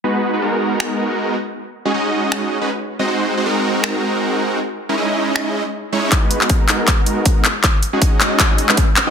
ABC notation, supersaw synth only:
X:1
M:4/4
L:1/16
Q:"Swing 16ths" 1/4=158
K:G#m
V:1 name="Supersaw synth"
[G,B,DFB]3 [G,B,DFB] [G,B,DFA]8- [G,B,DFA]2 z2 | z3 [G,CDFG] [G,CDFd]6- [G,CDFd] [G,CDFB] z3 [G,^B,DFd] | [G,^B,DF^B]3 [G,B,DFB] [G,B,DFA]12 | z3 [G,CDEA] [G,CDEd]6- [G,CDEd] z3 [G,CDEc]2 |
[G,B,DFB]3 [G,B,DFB] [G,B,DFA]8- [G,B,DFA]2 z2 | z3 [G,CDFG] [G,CDFd]6- [G,CDFd] [G,CDFB] z3 [G,^B,DFd] |]